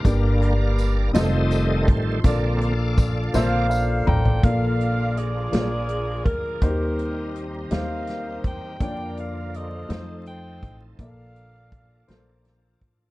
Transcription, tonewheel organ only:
<<
  \new Staff \with { instrumentName = "Tonewheel organ" } { \time 6/8 \key bes \major \tempo 4. = 55 << { f''4. ees''4 c''8 | f''2 r4 | <f bes d' f' aes'>4. <f bes d' aes'>4. | <g c' ees' bes'>2. |
<d f bes f'>4. <f c' ees' a'>4. | <f bes d' a'>2. | } \\ { <bes' d''>4. <a' c''>4. | <a' d''>2 r4 | r2. | r2. |
r2. | r2. | } >> }
  \new Staff \with { instrumentName = "Tonewheel organ" } { \clef bass \time 6/8 \key bes \major <d g bes>8 r4 <ees g a>4. | <d bes c'>8 r4 <d bes c'>8 r4 | r2. | r2. |
r2. | r2. | }
>>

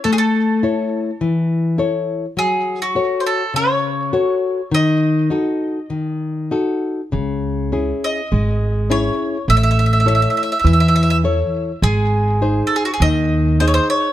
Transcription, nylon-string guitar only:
\new Staff \with { instrumentName = "Nylon-string guitar" } { \time 4/4 \key a \lydian \tempo 4 = 102 a4 <e' a' cis''>4 e4 <e' a' cis''>4 | fis4 <fis' a' cis''>4 cis4 <fis' a' cis''>4 | dis4 <dis' fis' a'>4 dis4 <dis' fis' a'>4 | cis4 <cis' e' gis'>4 gis4 <cis' e' gis'>4 |
a4 <e' a' cis''>4 e4 <e' a' cis''>4 | gis4 <dis' gis' bis'>4 dis4 <dis' gis' dis''>4 | }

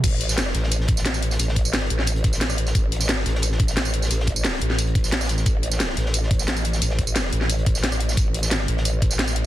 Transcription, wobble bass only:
\new Staff \with { instrumentName = "Wobble bass" } { \clef bass \time 4/4 \key c \major \tempo 4 = 177 a,,4. a,,2~ a,,8 | a,,4. a,,2~ a,,8 | a,,4. a,,2~ a,,8 | a,,4. a,,2~ a,,8 |
a,,4. a,,2~ a,,8 | a,,4. a,,2~ a,,8 | a,,4. a,,2~ a,,8 | }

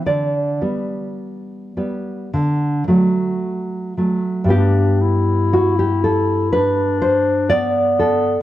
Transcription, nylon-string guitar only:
\new Staff \with { instrumentName = "Nylon-string guitar" } { \time 4/4 \key g \major \tempo 4 = 58 << { d''2. r4 | g'4 fis'16 g'16 a'8 b'8 c''8 d''8 a'8 | } \\ { d8 <g b>4 <g b>8 d8 <fis a>4 <fis a>8 | <g, g b>1 | } >> }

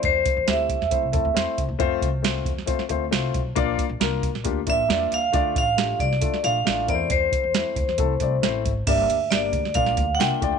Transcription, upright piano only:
\new Staff \with { instrumentName = "Upright piano" } { \time 4/4 \key a \phrygian \tempo 4 = 136 <a c' e' c''>8 r8 <a c' e' g'>8 r8 <a c' e' c''>8 <a c' e' a'>8 <a c' e' c''>8 r8 | <a c' f' c''>8 r8 <a c' f' c''>8 r8 <a c' f' c''>8 <a c' f' c''>8 <a c' f' c''>8 r8 | <bes d' f' d''>8 r8 <bes d' f' bes'>8 r8 <bes d' f' g'>8 <bes d' f' d''>8 <bes d' f' d''>8 r8 | <a d' f' d''>8 r8 <a d' f' g'>8 r8 <a d' f' a'>8 <a d' f' d''>8 <a d' f' d''>8 <a c' e' bes' c''>8~ |
<a c' e' bes' c''>8 r8 <a c' e' c''>8 r8 <a c' e' a'>8 <a c' e' d''>8 <a c' e' c''>8 r8 | <bes d' g' d''>8 r8 <bes d' g' d''>8 r8 <bes d' f' d''>8 r8 <bes d' f' e''>8 <a d' f' d''>8 | }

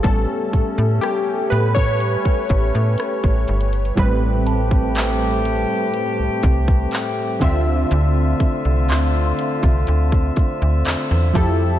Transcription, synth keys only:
\new Staff \with { instrumentName = "Synth keys" } { \time 4/4 \key a \minor \tempo 4 = 61 << { a'4 g'8 b'16 cis''4.~ cis''16 r8 | <a, g c' b'>2.~ <a, g c' b'>8 <d c' f' e''>8~ | <d c' f' e''>2.~ <d c' f' e''>8 <f e' g' a'>8 | } \\ { <g b cis'>4. r2 r8 | r1 | r1 | } >> }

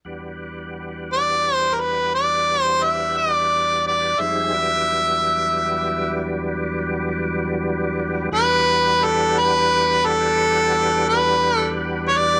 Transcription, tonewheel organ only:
\new Staff \with { instrumentName = "Tonewheel organ" } { \clef bass \time 12/8 \key e \minor \tempo 4. = 58 <e, g b d' fis'>1. | <f, dis g gis c'>8 <e, fis g b d'>1~ <e, fis g b d'>4. | <e, g b d' fis'>1. | }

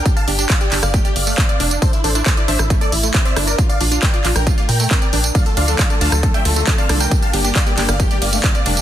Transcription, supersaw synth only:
\new Staff \with { instrumentName = "Supersaw synth" } { \time 4/4 \key g \dorian \tempo 4 = 136 g'16 <f'' a''>16 g'16 g'16 <d'' f''>16 g'16 g'16 <d'' f''>16 g'16 g'16 <d'' f''>4~ <d'' f''>16 r16 | <a' c''>16 e'16 <a' c''>16 e'16 <a' c''>16 e'16 <c'' e''>16 e'16 e'16 <a' d''>16 e'16 e'16 e'16 <c'' e''>16 e'16 <bes' d''>16 | f'16 <d'' f''>16 f'16 f'16 <bes' g''>16 f'16 f'16 <bes' g''>16 f'16 f'16 <bes' g''>4~ <bes' g''>16 r16 | <d'' f''>16 a'16 <d'' f''>16 a'16 <d'' f''>16 a'16 <f'' a''>16 a'16 a'16 <e'' g''>16 a'16 a'16 a'16 <f'' a''>16 a'16 <bes' g''>16 |
g'16 <f'' a''>16 g'16 g'16 <d'' f''>16 g'16 g'16 <d'' f''>16 g'16 g'16 <d'' f''>4~ <d'' f''>16 r16 | }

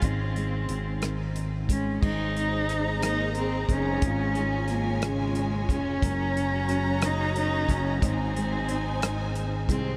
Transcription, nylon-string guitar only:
\new Staff \with { instrumentName = "Nylon-string guitar" } { \time 6/8 \key aes \mixolydian \tempo 4. = 60 <aes, ees'>8 aes4 ees8 ees'8 aes8 | <aes c''>8 ees'8 c''8 bes8 aes'8 ees'8 | <aes, f'>8 aes8 f'8 des8 des'8 aes8 | <ges, des'>8 ges8 des'8 des8 bes8 ges8 |
<aes, ees'>8 aes8 ees'8 ees8 c'8 aes8 | }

